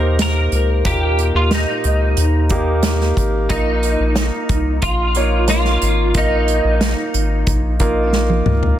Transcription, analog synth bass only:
Already playing: D#2
0.52 C#2
0.85 D#2
1.35 D#2
1.85 C#2
2.17 D#2
3.17 G#1
3.50 A#1
4.00 A#1
4.50 C2
4.83 A#1
5.82 G#1
6.15 A#1
6.64 A#1
7.14 G#1
7.47 A#1
8.46 C#2

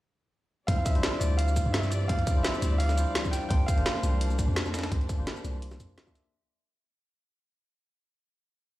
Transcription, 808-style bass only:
0.68 D2
0.95 A1
1.21 D2
1.66 G2
2.09 D2
2.36 A1
2.62 D2
3.50 C2
3.77 G1
4.03 C2
4.48 F2
4.92 C2
5.19 G1
5.45 C2
5.80 F2

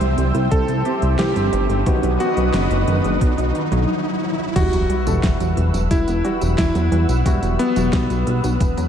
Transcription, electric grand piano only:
Already playing: C5
0.51 A4
1.19 G4
2.20 F#4
4.56 F#4
5.91 E4
6.58 E4
7.59 B3

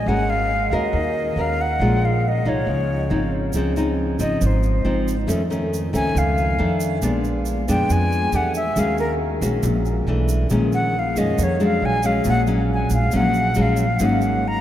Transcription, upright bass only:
0.06 G#1
0.71 D#2
0.93 D#2
1.36 D#2
1.79 A#1
2.45 C2
2.67 C#2
3.11 G#1
3.54 C#2
4.19 G#1
4.41 G#1
4.85 G#1
5.28 F2
5.94 C#2
6.15 C#2
6.60 F2
7.02 A#1
7.68 F2
7.90 F2
8.32 E2
8.76 D#2
9.41 A#1
9.63 A#1
10.07 B1
10.51 A#1
11.16 F2
11.38 F2
11.82 A#1
12.25 A#1
12.90 A#1
13.13 A#1
13.57 A#1
14.00 G#1

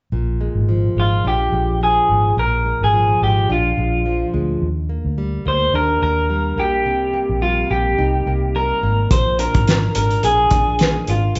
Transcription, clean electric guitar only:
1.00 F4
1.28 G4
1.83 G#4
2.39 A#4
2.84 G#4
3.24 G4
3.52 F4
5.48 C5
5.75 A#4
6.03 A#4
6.59 G4
7.42 F4
7.71 G4
8.56 A#4
9.12 C5
9.40 A#4
9.96 A#4
10.24 G#4
11.10 F4

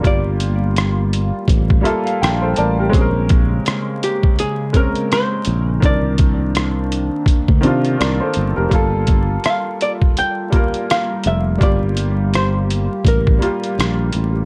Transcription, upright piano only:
Already playing: A#3 F4 A#4
0.00 G3 A#3
0.05 F4 G4
1.81 G3 A#3 F4 E5
1.87 A4
2.05 F5
2.22 G5
2.42 A4 C5
2.57 A#4 D5 A5
2.79 G4 A#4
2.89 G#3 C4 C#4
2.95 G#4
3.01 A#4
4.73 G#3 C4 C#4
4.79 A#4
5.80 D#3 C4 D4
5.86 A#4
7.61 D#3 C4 D4
7.66 F4
7.99 A#4 D5
8.20 A4 C5
8.56 G4 A#4
8.69 G3 A#3 F4
8.75 A4
10.50 G3 A#3 F4
10.56 A#4
11.58 G3 A#3 F4
11.63 G4
13.38 G3 A#3 F4
13.44 G4

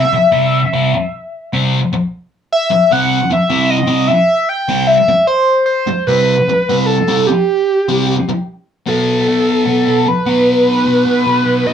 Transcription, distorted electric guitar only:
0.13 muted distorted electric guitar stroke
0.32 C3 G3 C4
0.73 C3 G3 C4
0.94 muted distorted electric guitar stroke
1.53 C3 G3 C4
1.93 muted distorted electric guitar stroke
2.70 muted distorted electric guitar stroke
2.91 C3 G3 C4
3.30 muted distorted electric guitar stroke
3.50 C3 G3 C4
3.87 C3 G3 C4
4.09 muted distorted electric guitar stroke
4.68 C3 G3 C4
5.08 muted distorted electric guitar stroke
5.87 muted distorted electric guitar stroke
6.07 C3 G3 C4
6.48 muted distorted electric guitar stroke
6.69 C3 G3 C4
7.08 C3 G3 C4
7.29 muted distorted electric guitar stroke
7.88 C3 G3 C4
8.28 muted distorted electric guitar stroke
8.86 B2 F#3 B3
9.27 B2 F#3 B3
9.65 B2 F#3 B3
9.85 F#3 B3
10.06 muted distorted electric guitar stroke
10.26 F#3 B3
10.85 B2 F#3 B3
11.05 F#3 B3
11.25 B2 F#3 B3
11.44 F#3 B3
11.64 B2 F#3 B3

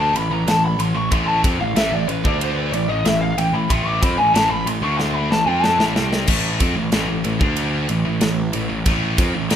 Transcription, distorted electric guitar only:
Already playing: D3 A3 D4
0.15 A2 E3
0.31 A2 E3
0.47 A2 E3
0.79 A2 E3
0.95 A2 E3
1.12 A2 E3 A3
1.43 F3 C4
1.60 A2 E3
1.76 A2 E3
1.92 A2 E3
2.08 A2 E3
2.24 D3 A3 D4
2.73 A2 E3
2.89 A2 E3
3.05 A2 E3
3.38 A2 E3
3.54 A2 E3
3.69 A2 E3 A3
4.02 F3 C4
4.19 A2 E3
4.34 A2 E3
4.51 A2 E3
4.67 A2 E3
4.82 D3 A3 D4
5.31 A2 E3
5.47 F3 C4 F4
5.79 A2 E3
5.95 C3 G3 C4
6.28 A2 E3 A3
6.61 F3 C4
6.76 A2 E3
6.93 A2 E3
7.09 A2 E3
7.25 A2 E3
7.40 D3 A3 D4
7.89 A2 E3
8.05 A2 E3
8.20 A2 E3
8.53 A2 E3
8.69 A2 E3
8.86 A2 E3 A3
9.18 F3 C4
9.34 A2 E3
9.50 A2 E3

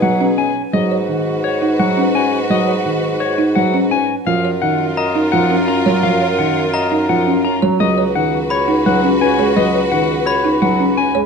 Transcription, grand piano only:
0.02 F#3
0.38 C#4
0.73 F#3
1.09 D#3
1.79 F#3
2.15 C#4
2.50 F#3
2.86 D#3
3.56 F#3
3.91 C#4
4.27 F3
4.62 D#3
5.33 F3
5.68 C#4
5.86 F#3
6.03 F3
6.39 D#3
7.09 F3
7.45 C#4
7.63 F#3
7.80 F#3
8.15 D#3
8.86 F#3
9.21 C#4
9.39 G#3
9.57 F#3
9.92 D#3
10.62 F#3
10.98 C#4
11.15 G#3

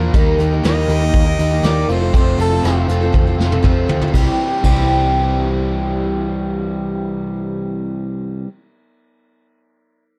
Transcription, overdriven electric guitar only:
Already playing: A#2 F3 A#3 D4 F4
0.14 D#3 A#3 D#4 G4
0.39 A#3 D#4 G4
0.64 D#3 A#3 D#4 G4
0.90 A#3 D#4 G4
1.39 A#3 D#4 G4
1.64 D#3 A#3 D#4 G4
1.89 F2 C3 F3 A3 C4 F4
2.14 F2 C3 F3 A3 C4 F4
2.39 F3 A3 C4 F4
2.63 F3 A3 C4 F4
2.88 F3 A3 C4 F4
3.38 F3 A3 C4 F4
3.63 F2 C3 F3 A3 C4 F4
4.12 C3 E3 G3 C4
4.17 G4
4.62 C3 E3 G3 C4
4.66 G4

